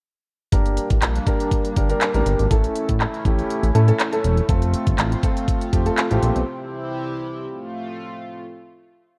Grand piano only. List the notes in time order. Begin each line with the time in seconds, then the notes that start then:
0.52 A#3 D4 G4 A#4
1.27 A#3 D4 G4 A#4
1.76 A#3 D4 G4 A#4
1.89 A#3 D4 G4 A#4
2.14 A#3 D4 G4 A#4
2.50 A3 C#4 E4 A4
3.25 A3 C#4 E4 G4
3.74 A3 C#4 E4 A4
3.88 A3 C#4 E4 A4
4.12 A3 C#4 E4 A4
4.49 A3 C4 F4 A4
5.23 A3 C4 F4 A4
5.73 A3 C4 F4 G4
5.86 A3 C4 F4 A4
6.11 A3 C4 F4 G4